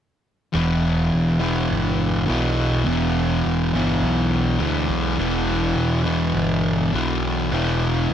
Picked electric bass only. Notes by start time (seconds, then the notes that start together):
0.54 E1
1.13 E1
1.71 G1
2.29 B1
2.86 E1
3.45 E1
3.73 G1
4.02 B1
4.60 D2
4.89 B1
5.19 E1
5.76 E1
6.34 G1
6.94 B1
7.51 E1
8.10 E1